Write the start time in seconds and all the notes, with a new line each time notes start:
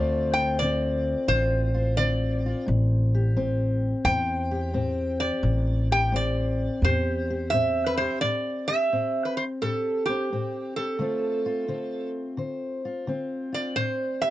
Already playing: D2 D3 A3 C4 F4 C5 D5
0.34 G5
0.38 F4
0.59 D3 C4 D5
1.28 A1 D3 F4 C5
1.74 F4
1.97 D3 C4 D5
2.46 F4
2.66 A1 A2
3.15 G4
3.37 A2 C4
4.05 E2 A2 C5 G5
4.51 G4
4.74 A2 C4
5.20 G4 D5
5.43 A1 A2
5.92 G4 G5
6.12 A2 C4 D5
6.82 E2 A2 G4 C5
7.30 G4
7.50 A2 C4 E5
7.86 B4
7.97 G4 C5
8.21 A2 D5
8.68 G4 E5
8.93 A2 C4
9.25 B4
9.37 C5
9.62 A2 G4 A4
10.06 C4 G4
10.32 A2 C4
10.76 G4 A4
10.99 D3 A3 C4 F4
11.46 F4
11.68 D3 C4
12.37 D3 C5
12.85 F4
13.07 D3 C4
13.53 F4 D5
13.76 A2 C5
14.22 G4 E5